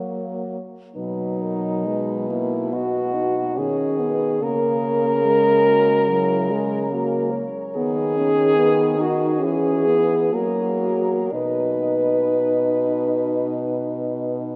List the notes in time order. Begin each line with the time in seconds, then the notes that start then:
Already playing: F#3 A#3 A#4
0.96 B2 F#3 D#4 B4
1.42 A#4
1.85 G#3 B4
2.29 A#3 E4
2.72 B3 F#4 D#5
3.14 D#4
3.56 D#3 C#4 G#4 C#5
3.99 B3 B4
4.41 C#3 A#3 A#4
5.25 G#3 G#4
5.67 F#4
6.08 F#3 E4
6.50 G#3 G#4
6.92 A#3 F#4
7.32 C#5
7.76 D#3 B3 G#4
8.17 C#4
8.57 B3 B4
8.97 D#4 F#4 A#4
9.40 E3 C#4 G#4
9.44 G#4
9.86 B3
10.33 F#3 A#3 F#4 A#4
11.32 B2 D#4 B4 D#5